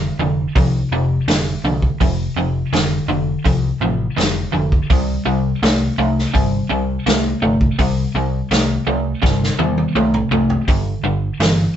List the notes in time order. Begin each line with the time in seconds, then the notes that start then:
Already playing: F2 D3
0.19 F1 F2 D3
0.56 C2 F2 C3, kick, open hi-hat
0.92 F1 F2 C3
1.28 F1 F2 D3, snare, open hi-hat
1.64 C2 F2 D3
1.82 kick
2.01 F1 F2 C3, kick, open hi-hat
2.36 F1 F2 C3
2.73 F1 F2 D3, snare, open hi-hat
3.08 F1 F2 D3
3.45 C2 F2 C3, kick, open hi-hat
3.81 A1 F2 C3
4.17 F1 F2 D3, snare, open hi-hat
4.53 F1 F2 D3
4.72 kick
4.90 C2 C3 G3, kick, open hi-hat
5.26 C2 C3 G3
5.62 C2 C3 A3, snare, open hi-hat
5.98 C2 C3 A3
6.19 snare
6.34 G1 C3 G3, kick, open hi-hat
6.70 C2 C3 G3
7.06 C2 C3 A3, snare, open hi-hat
7.42 G1 C3 A3
7.61 kick
7.79 C2 C3 G3, kick, open hi-hat
8.14 C2 C3 G3
8.51 C2 C3 A3, snare, open hi-hat
8.87 C2 C3 A3
9.23 G1 C3 G3, kick, snare
9.43 snare
9.59 E2 C3 G3, high tom
9.78 high tom
9.95 C2 C3 A3, mid tom
10.14 mid tom
10.31 C2 C3 A3, floor tom
10.50 floor tom
10.68 G1 G2 D3, kick, open hi-hat
11.04 G1 G2 D3
11.40 G1 G2 E3, snare, open hi-hat